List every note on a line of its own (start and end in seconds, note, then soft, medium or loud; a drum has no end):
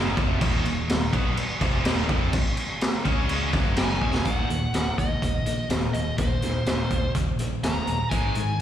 0.00 0.16 F#1 loud
0.00 0.16 F#2 medium
0.00 0.16 C#3 loud
0.00 0.16 F#3 loud
0.16 0.39 F1 loud
0.16 0.39 F2 medium
0.16 0.40 C3 medium
0.16 0.40 F3 loud
0.16 kick loud
0.16 crash medium
0.40 0.64 D#1 medium
0.40 0.63 D#2 loud
0.40 0.64 A#2 loud
0.40 0.64 D#3 loud
0.40 kick loud
0.40 crash medium
0.64 0.88 D#1 medium
0.64 0.84 D#2 medium
0.64 0.84 A#2 medium
0.64 crash medium
0.88 1.12 D#1 medium
0.88 1.08 D#2 medium
0.88 1.08 A#2 medium
0.88 snare loud
0.88 crash medium
1.12 1.35 B1 medium
1.12 1.36 B2 medium
1.12 1.36 F#3 medium
1.12 1.36 B3 loud
1.12 kick loud
1.12 crash medium
1.36 muted distorted electric guitar stroke medium
1.36 muted picked electric bass stroke soft
1.36 crash medium
1.60 1.84 F1 medium
1.60 1.84 F2 medium
1.60 1.84 C3 medium
1.60 1.84 F3 medium
1.60 kick loud
1.60 snare soft
1.60 crash medium
1.85 2.08 D#1 loud
1.85 2.08 D#2 medium
1.85 2.08 A#2 medium
1.85 2.09 D#3 loud
1.85 snare loud
1.85 crash medium
2.09 2.32 F1 medium
2.09 2.32 F2 medium
2.09 2.33 C3 medium
2.09 2.33 F3 medium
2.09 kick medium
2.09 crash medium
2.33 kick loud
2.33 crash medium
2.57 crash medium
2.81 snare loud
2.81 crash medium
3.05 3.50 C#2 medium
3.05 3.52 C#3 medium
3.05 3.53 G#3 loud
3.05 3.53 C#4 loud
3.05 kick loud
3.05 crash medium
3.29 crash medium
3.53 3.98 F#1 medium
3.53 4.00 F#2 medium
3.53 4.01 C#3 loud
3.53 4.01 F#3 loud
3.53 kick loud
3.53 snare soft
3.53 crash medium
3.76 4.26 G#5 medium
3.76 snare loud
3.76 crash medium
4.01 4.24 D#1 medium
4.01 4.24 D#2 medium
4.01 4.24 A#2 medium
4.01 4.25 D#3 medium
4.01 kick medium
4.14 snare medium
4.25 4.41 D#1 medium
4.25 4.48 D#2 medium
4.25 4.48 A#2 medium
4.25 4.48 D#3 medium
4.25 4.95 F#5 medium
4.25 kick loud
4.25 closed hi-hat medium
4.49 4.71 D#2 medium
4.49 4.65 D#2 medium
4.49 4.72 A#2 medium
4.49 closed hi-hat medium
4.73 4.88 D#1 medium
4.73 4.96 D#2 medium
4.73 4.96 A#2 medium
4.73 snare loud
4.73 closed hi-hat medium
4.98 5.20 D#2 medium
4.98 5.13 D#2 medium
4.98 5.20 A#2 medium
4.98 5.66 D#5 medium
4.98 kick medium
4.98 closed hi-hat medium
5.22 5.37 D#1 medium
5.22 5.44 D#2 medium
5.22 5.44 A#2 medium
5.22 kick medium
5.22 closed hi-hat medium
5.46 5.61 A#1 medium
5.46 5.68 D#2 medium
5.46 5.68 A#2 medium
5.46 closed hi-hat medium
5.69 5.85 D#1 medium
5.69 5.91 D#2 medium
5.69 5.92 A#2 medium
5.69 snare loud
5.69 closed hi-hat medium
5.94 6.09 D#1 medium
5.94 6.16 D#2 medium
5.94 6.16 A#2 medium
5.94 6.17 D#5 loud
5.94 closed hi-hat medium
6.18 6.34 D#1 medium
6.18 6.40 D#2 medium
6.18 6.41 A#2 medium
6.18 7.11 C5 medium
6.18 kick loud
6.18 closed hi-hat medium
6.42 6.58 D#2 medium
6.42 6.65 D#2 medium
6.42 6.65 A#2 medium
6.42 snare soft
6.42 closed hi-hat medium
6.66 6.82 D#1 medium
6.66 6.89 D#2 medium
6.66 6.89 A#2 medium
6.66 snare loud
6.66 closed hi-hat medium
6.90 7.06 D#2 medium
6.90 7.13 D#2 medium
6.90 7.13 A#2 medium
6.90 kick medium
6.90 closed hi-hat medium
7.15 7.30 D#1 medium
7.15 7.37 D#2 medium
7.15 7.37 A#2 medium
7.15 kick medium
7.15 closed hi-hat medium
7.39 7.54 A#1 medium
7.39 7.61 D#2 medium
7.39 7.62 A#2 medium
7.39 closed hi-hat medium
7.63 7.78 D#1 medium
7.63 7.85 D#2 medium
7.63 7.85 A#2 medium
7.63 8.09 A#5 medium
7.63 snare loud
7.63 closed hi-hat medium
7.87 8.02 D#1 medium
7.87 8.09 D#2 medium
7.87 8.10 A#2 medium
7.87 closed hi-hat medium
8.10 8.27 G#1 medium
8.10 8.34 G#2 medium
8.10 8.34 D#3 medium
8.10 8.35 G#3 loud
8.10 8.62 G#5 medium
8.10 kick loud
8.10 closed hi-hat medium
8.35 8.57 G#2 medium
8.35 8.51 G#2 medium
8.35 8.58 D#3 medium
8.35 closed hi-hat medium